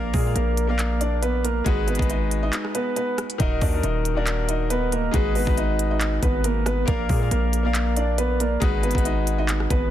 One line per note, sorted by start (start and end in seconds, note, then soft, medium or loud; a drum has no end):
0.00 0.13 A#1 loud
0.00 0.13 A#3 medium
0.00 0.14 A#3 medium
0.00 0.12 A#4 medium
0.00 0.14 A#4 medium
0.00 0.15 D5 medium
0.00 0.15 F5 loud
0.14 0.35 A#2 loud
0.14 0.34 G#3 medium
0.14 0.34 G#4 medium
0.14 kick medium
0.14 open hi-hat medium
0.24 0.54 A#3 medium
0.24 0.55 A#4 medium
0.24 0.55 D5 medium
0.24 0.56 F5 medium
0.36 1.62 A#1 loud
0.36 0.67 A#3 medium
0.36 0.67 A#4 medium
0.36 closed hi-hat medium
0.57 closed hi-hat medium
0.67 1.28 A#3 medium
0.67 0.99 A#3 medium
0.67 1.29 A#4 medium
0.67 0.99 A#4 medium
0.67 1.29 D5 medium
0.67 1.30 F5 medium
0.79 clap loud
0.79 closed hi-hat medium
1.01 1.22 D4 medium
1.01 1.21 D5 medium
1.01 closed hi-hat medium
1.22 1.43 B3 medium
1.22 1.43 B4 medium
1.22 closed hi-hat medium
1.44 1.65 A#3 medium
1.44 1.65 A#4 medium
1.44 closed hi-hat medium
1.64 1.98 G#1 loud
1.64 1.88 G#3 loud
1.64 1.87 G#3 medium
1.64 1.89 D#4 medium
1.64 1.89 F#4 loud
1.64 1.86 G#4 medium
1.64 1.90 B4 loud
1.64 kick loud
1.64 closed hi-hat medium
1.87 2.08 B3 medium
1.87 2.08 B4 medium
1.87 closed hi-hat medium
1.87 open hi-hat medium
1.95 2.58 G#3 medium
1.95 2.59 D#4 medium
1.95 closed hi-hat medium
1.99 2.51 G#1 loud
1.99 2.60 F#4 medium
1.99 2.60 B4 medium
1.99 kick loud
1.99 closed hi-hat medium
2.10 2.41 D#4 medium
2.10 2.41 D#5 medium
2.10 closed hi-hat medium
2.31 closed hi-hat medium
2.43 2.73 D#4 medium
2.43 2.73 D#5 medium
2.53 clap loud
2.53 closed hi-hat loud
2.65 cross-stick medium
2.75 2.95 B3 medium
2.75 2.95 B4 medium
2.75 closed hi-hat medium
2.96 3.17 B3 medium
2.96 3.17 B4 medium
2.96 closed hi-hat medium
3.18 cross-stick medium
3.18 closed hi-hat medium
3.30 closed hi-hat medium
3.38 3.61 D#1 loud
3.38 3.62 D#3 loud
3.38 3.62 D#4 medium
3.38 3.61 D#4 medium
3.38 3.63 F#4 medium
3.38 3.64 A#4 loud
3.38 3.60 D#5 loud
3.38 kick loud
3.38 closed hi-hat medium
3.61 3.83 D#2 loud
3.61 3.82 D4 medium
3.61 3.82 D5 medium
3.61 kick medium
3.61 open hi-hat medium
3.72 4.02 D#3 medium
3.72 4.03 D#4 medium
3.72 4.03 F#4 medium
3.72 4.04 A#4 medium
3.83 5.10 D#1 loud
3.83 4.15 D#4 medium
3.83 4.15 D#5 medium
3.83 closed hi-hat medium
4.05 closed hi-hat medium
4.15 4.76 D#3 medium
4.15 4.77 A#3 medium
4.15 4.47 D4 medium
4.15 4.77 F#4 medium
4.15 4.78 A#4 medium
4.15 4.47 D5 medium
4.27 clap loud
4.27 closed hi-hat loud
4.49 4.69 D#4 medium
4.49 4.89 D#5 medium
4.49 4.69 D#5 medium
4.49 closed hi-hat medium
4.70 4.91 B3 medium
4.70 4.91 B4 medium
4.70 closed hi-hat medium
4.92 5.13 A#3 medium
4.92 5.12 A#4 medium
4.92 5.13 D#5 medium
4.92 closed hi-hat medium
5.11 5.46 G#1 loud
5.11 5.35 G#3 loud
5.11 5.35 G#3 medium
5.11 5.36 D#4 loud
5.11 5.37 F#4 medium
5.11 5.34 G#4 loud
5.11 5.37 B4 loud
5.11 kick loud
5.11 closed hi-hat medium
5.35 5.56 B3 medium
5.35 5.56 B4 medium
5.35 open hi-hat medium
5.45 6.20 G#1 loud
5.45 6.06 G#3 medium
5.45 6.07 D#4 medium
5.45 6.07 F#4 medium
5.45 6.08 B4 medium
5.45 kick loud
5.57 5.89 D#4 medium
5.57 5.89 D#5 medium
5.57 closed hi-hat medium
5.79 closed hi-hat medium
5.91 6.21 D#4 medium
5.91 6.21 D#5 medium
6.01 clap loud
6.01 closed hi-hat loud
6.23 6.85 G#1 loud
6.23 6.43 B3 medium
6.23 6.43 B4 medium
6.23 kick loud
6.23 closed hi-hat medium
6.44 6.65 A#3 medium
6.44 6.65 A#4 medium
6.44 closed hi-hat medium
6.66 6.87 B3 medium
6.66 6.86 B4 medium
6.66 cross-stick loud
6.66 closed hi-hat medium
6.86 7.09 A#1 loud
6.86 7.09 A#3 loud
6.86 7.08 A#3 medium
6.86 7.10 A#4 medium
6.86 7.08 A#4 medium
6.86 7.11 D5 medium
6.86 7.11 F5 loud
6.86 kick loud
6.86 closed hi-hat medium
7.09 7.30 A#2 loud
7.09 7.30 G#3 medium
7.09 7.30 G#4 medium
7.09 kick medium
7.09 open hi-hat medium
7.19 7.50 A#3 medium
7.19 7.51 A#4 medium
7.19 7.51 D5 medium
7.19 7.52 F5 medium
7.31 8.58 A#1 loud
7.31 7.63 A#3 medium
7.31 7.63 A#4 medium
7.31 closed hi-hat medium
7.53 closed hi-hat medium
7.63 8.24 A#3 medium
7.63 7.95 A#3 medium
7.63 8.25 A#4 medium
7.63 7.95 A#4 medium
7.63 8.25 D5 medium
7.63 8.26 F5 medium
7.75 clap loud
7.75 closed hi-hat loud
7.96 8.17 D4 medium
7.96 8.37 D5 medium
7.96 8.17 D5 medium
7.96 closed hi-hat medium
8.18 8.39 B3 medium
8.18 8.38 B4 medium
8.18 closed hi-hat medium
8.40 8.61 A#3 medium
8.40 8.60 A#4 medium
8.40 8.61 D5 medium
8.40 closed hi-hat medium
8.60 8.94 G#1 loud
8.60 8.84 G#3 loud
8.60 8.82 G#3 medium
8.60 8.84 D#4 medium
8.60 8.85 F#4 loud
8.60 8.82 G#4 medium
8.60 8.85 B4 loud
8.60 kick loud
8.60 closed hi-hat medium
8.83 9.04 B3 medium
8.83 9.04 B4 medium
8.83 closed hi-hat medium
8.83 open hi-hat medium
8.91 9.54 G#3 medium
8.91 9.55 D#4 medium
8.91 closed hi-hat medium
8.95 9.67 G#1 loud
8.95 9.55 F#4 medium
8.95 9.56 B4 medium
8.95 kick loud
8.95 closed hi-hat medium
9.05 9.37 D#4 medium
9.05 9.37 D#5 medium
9.05 closed hi-hat medium
9.27 closed hi-hat medium
9.38 9.69 D#4 medium
9.38 9.68 D#5 medium
9.49 clap loud
9.49 closed hi-hat loud
9.60 cross-stick medium
9.70 9.90 G#1 loud
9.70 9.90 B3 medium
9.70 9.90 B4 medium
9.70 kick loud
9.70 closed hi-hat medium